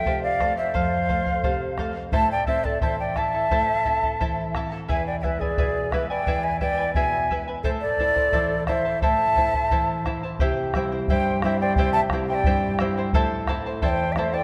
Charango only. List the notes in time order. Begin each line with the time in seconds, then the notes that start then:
0.06 A4 C5 F5
0.40 A4 C5 F5
0.57 C5 F5
0.74 A4 C5 F5
1.09 A4 C5 F5
1.26 C5 F5
1.44 A4 C5 F5
1.79 A4 C5 F5
1.95 C5 F5
2.13 E4 A4 C5 E5 A5
2.47 E4 A4 E5 A5
2.65 E4 A4 A5
2.82 E4 A4 C5 E5 A5
3.16 E4 A4 E5 A5
3.34 E4 A4 A5
3.51 E4 A4 C5 E5 A5
3.85 E4 A4 E5 A5
4.03 E4 A4 A5
4.20 E4 A4 C5 E5 A5
4.56 E4 A4 E5 A5
4.72 E4 A4 A5
4.88 E4 G#4 B4 E5 G#5
5.23 E4 B4 E5 G#5
5.41 E4 B4 G#5
5.58 E4 G#4 B4 E5 G#5
5.93 E4 B4 E5 G#5
6.10 E4 B4 G#5
6.27 E4 G#4 B4 E5 G#5
6.61 E4 B4 E5 G#5
6.78 E4 B4 G#5
6.96 E4 G#4 B4 E5 G#5
7.31 E4 B4 E5 G#5
7.48 E4 B4 G#5
7.64 E4 A4 C5 E5 A5
8.00 E4 C5 E5 A5
8.16 E4 C5 A5
8.33 E4 A4 C5 E5 A5
8.68 E4 C5 E5 A5
8.85 E4 C5 A5
9.02 E4 A4 C5 E5 A5
9.36 E4 C5 E5 A5
9.54 E4 C5 A5
9.71 E4 A4 C5 E5 A5
10.05 E4 C5 E5 A5
10.23 E4 C5 A5
10.40 E4 G4 C5 E5 G5
10.75 E4 C5 E5 G5
10.92 E4 C5 G5
11.10 E4 G4 C5 E5 G5
11.45 E4 C5 E5 G5
11.62 E4 C5 G5
11.78 E4 G4 C5 E5 G5
12.13 E4 C5 E5 G5
12.30 E4 C5 G5
12.46 E4 G4 C5 E5 G5
12.80 E4 C5 E5 G5
12.97 E4 C5 G5
13.14 E4 A4 C5 E5 A5
13.48 E4 C5 E5 A5
13.66 E4 C5 A5
13.82 E4 A4 C5 E5 A5
14.18 E4 C5 E5 A5
14.34 E4 C5 A5